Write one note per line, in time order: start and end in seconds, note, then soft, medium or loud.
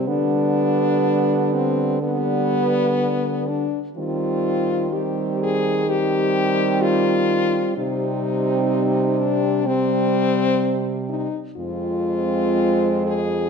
0.07 3.70 D3 medium
0.07 1.99 G3 medium
0.07 2.02 B3 medium
0.07 1.56 D4 loud
1.54 2.02 C4 medium
2.02 3.66 G3 medium
2.02 3.66 B3 medium
2.02 3.50 B3 loud
3.48 3.79 D4 medium
3.96 7.73 D#3 medium
3.96 4.88 G3 medium
3.96 4.87 C4 medium
3.96 4.95 F4 loud
4.91 5.86 G3 medium
4.91 5.85 C4 medium
4.91 5.40 G4 medium
5.43 5.91 G#4 loud
5.87 7.74 G3 medium
5.87 7.73 C4 medium
5.87 6.83 G4 loud
6.82 7.76 F4 loud
7.77 11.28 C3 medium
7.77 9.63 G3 medium
7.77 9.62 C4 medium
7.77 9.20 D#4 loud
9.19 9.68 D4 loud
9.66 11.28 G3 medium
9.66 10.92 C4 loud
9.66 11.28 C4 medium
11.09 11.40 D#4 medium
11.56 13.49 F2 medium
11.56 13.49 G#3 medium
11.56 13.49 C4 medium
11.56 13.03 F4 loud
13.07 13.49 G#4 loud